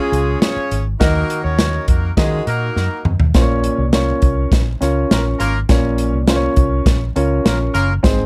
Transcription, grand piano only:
Already playing: C#4 F4 G#4 C#5
1.00 D#3 D#4 F#4 A#4 D#5
2.17 D#4 F#4 A#4 D#5
3.34 A#2 C#4 F4 A#4 C5
3.42 C#5
3.93 C#4 F4 A#4 C#5
4.81 C#4 F4 A#4 C#5
5.69 A#2 C#4 F4 A#4 C#5
6.28 C#4 F4 A#4 C5
6.36 C#5
7.16 C#4 F4 A#4 C#5
8.03 G#2 C4 D#4 G#4 C5

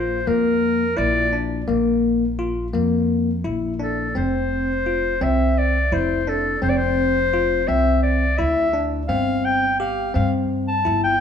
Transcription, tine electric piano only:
Already playing: F4
0.27 A#3
0.97 E4
1.33 D4
1.68 A#3
2.39 F4
2.73 A#3
3.44 E4
3.80 D4
4.15 C4
4.86 F4
5.21 C4
5.92 E4
6.27 D4
6.62 C4
7.33 F4
7.69 C4
8.38 E4
8.73 D4
9.09 C4
9.80 G4
10.14 C4
10.85 E4

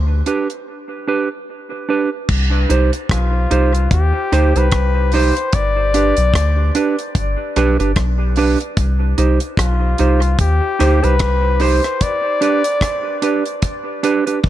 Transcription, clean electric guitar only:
0.26 D4 G4 B4
1.07 D4 G4 B4
1.72 muted clean electric guitar stroke
1.89 D4 G4 B4
2.69 D#4 G4 C5
3.51 D#4 G4 C5
4.32 D#4 G4 C5
4.56 D#4 G4 C5
5.14 D#4 G4 C5
5.94 D4 G4 B4
6.75 D4 G4 B4
7.56 D4 G4 B4
7.79 D4 G4 B4
8.37 D4 G4 B4
9.18 D#4 G4 C5
9.99 D#4 G4 C5
10.79 D#4 G4 C5
11.03 D#4 G4 C5
11.60 D#4 G4 C5
12.41 D4 G4 B4
13.22 D4 G4 B4
14.03 D4 G4 B4
14.27 D4 G4 B4

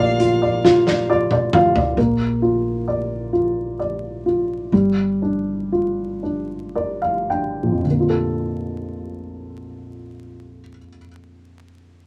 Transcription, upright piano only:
Already playing: A#3 F4 D5
0.20 F4
0.42 D5
0.64 F4
0.87 D5
1.09 F4 D5
1.32 D5
1.54 F4 F5
1.76 D5
1.98 A#3
2.42 F4
2.88 D5
3.33 F4
3.79 D5
4.26 F4
4.73 G3
5.22 D4
5.72 F4
6.23 D4
6.75 A#4 D5
7.02 F5
7.30 D4 G5
7.63 A#1
7.72 F2
7.81 D3
7.91 A#3
8.00 F4
8.10 A4

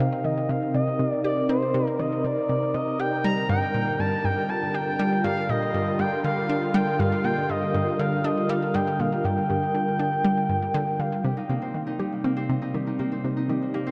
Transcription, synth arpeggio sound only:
0.00 C3
0.24 D#3
0.49 C3
0.74 C3
0.99 C3
1.24 G4
1.49 C4
1.74 C3
1.99 D#3
2.24 C3
2.49 C3
2.74 C3
2.99 G4
3.24 G3
3.49 G2
3.74 A#2
3.99 G2
4.24 G2
4.49 D3
4.74 D4
4.99 G3
5.24 G2
5.49 A#2
5.74 G2
5.99 G2
6.24 D3
6.49 D4
6.74 G3
6.99 G2
7.24 A#2
7.49 G2
7.74 G2
7.99 D3
8.24 D4
8.49 G3
8.74 G2
8.99 A#2
9.25 G2
9.50 G2
9.75 D3
9.99 D4
10.24 G3
10.49 G2
10.74 D3
10.99 D3
11.24 C3
11.49 C3
11.74 D#3
11.99 G4
12.24 C4
12.49 C3
12.74 D#3
12.99 C3
13.24 C3
13.49 D#3
13.74 G4

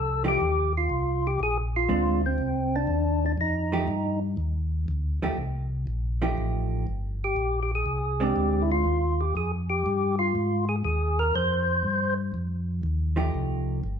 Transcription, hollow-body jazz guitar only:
0.24 F3 A3 D#4 G4
1.89 G#3 C4 D4
3.72 F3 A3 D#4 G4
5.22 F3 A3 D#4 G4
6.22 F3 A3 D#4 G4
8.20 G#3 C4 D4
13.16 F3 A3 D#4 G4

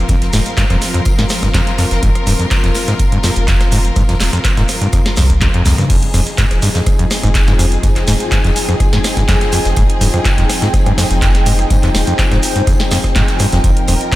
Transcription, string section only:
Already playing: F3 C4 F4 A#4
5.90 F3 C4 D#4 G#4
13.64 A#4

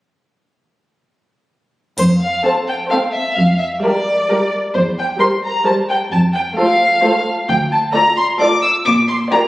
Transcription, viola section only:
2.45 C4 A4
2.91 C4 A4
3.83 G3 G4
4.29 G3 G4
5.20 G3 G4
5.67 G3 G4
6.58 A3 F4
7.03 A3 F4
7.95 A3 F4
8.40 A3 F4
9.32 A#3 F4

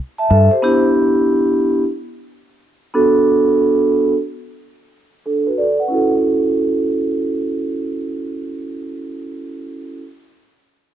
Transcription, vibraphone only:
0.18 E5 A5
0.30 A4 E5
0.51 G4 C5
0.62 B3 D4 E4 G4
2.94 B3 D4 F#4 A4
5.26 D4 A4
5.47 F#4 B4
5.58 A4 D5
5.80 B4 F#5
5.88 C#4 E4 F#4
5.94 A4

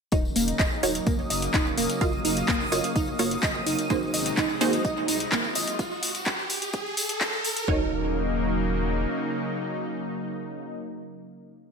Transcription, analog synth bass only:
0.12 D#1
0.36 D#1
0.59 D#1
0.83 D#1
1.07 F#1
1.30 F#1
1.54 D#1
1.78 D#1
2.01 F#1
2.25 F#1
2.48 F#1
2.72 F#1
2.96 F#1
3.19 F#1
3.43 F#1
3.67 F#1
3.90 G#1
4.14 G#1
4.37 G#1
4.61 G#1
4.85 C2
5.08 C2
5.32 G#1
5.56 G#1
7.68 D#1

